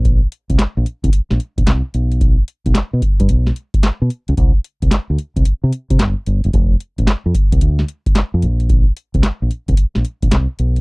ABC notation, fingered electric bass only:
X:1
M:4/4
L:1/16
Q:"Swing 16ths" 1/4=111
K:Cdor
V:1 name="Fingered electric bass" clef=bass
B,,,2 z C,, z B,,, z C,, z B,,, z B,,, C,, z =B,,,2- | =B,,,2 z B,,, z =B,, z G,, B,,,2 z3 B,, z _D,, | C,, z2 C,, z D,, z C,, z C, z C, G,,, z G,,, _G,,, | F,,,2 z A,,, z F,, z C,, D,,2 z3 F,, B,,,2- |
B,,,2 z C,, z B,,, z C,, z B,,, z B,,, C,, z =B,,,2 |]